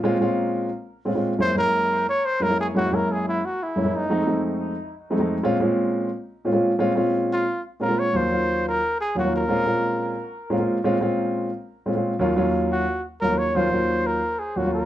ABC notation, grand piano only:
X:1
M:4/4
L:1/16
Q:1/4=178
K:Bbm
V:1 name="Grand piano"
[B,,A,CDF] z [B,,A,CDF]6 z4 [B,,A,CDF] [B,,A,CDF]2 z | [G,,A,B,D_F] z [G,,A,B,DF]6 z4 [G,,A,B,DF] [G,,A,B,DF]2 z | [G,,A,B,D_F] z [G,,A,B,DF]6 z4 [G,,A,B,DF] [G,,A,B,DF]2 z | [F,,^G,=A,CE] z [F,,G,A,CE]6 z4 [F,,G,A,CE] [F,,G,A,CE]2 z |
[B,,A,CDF] z [B,,A,CDF]6 z4 [B,,A,CDF] [B,,A,CDF]2 z | [B,,A,CDF] z [B,,A,CDF]6 z4 [B,,A,CDF] [B,,A,CDF]2 z | [E,,G,B,DF] z [E,,G,B,DF]6 z4 [E,,G,B,DF] [E,,G,B,DF]2 z | [B,,A,CDF] z [B,,A,CDF]6 z4 [B,,A,CDF] [B,,A,CDF]2 z |
[B,,A,CDF] z [B,,A,CDF]6 z4 [B,,A,CDF] [B,,A,CDF]2 z | [E,,G,B,DF] z [E,,G,B,DF]6 z4 [E,,G,B,DF] [E,,G,B,DF]2 z | [E,,G,B,DF] z [E,,G,B,DF]6 z4 [E,,G,B,DF] [E,,G,B,DF]2 z |]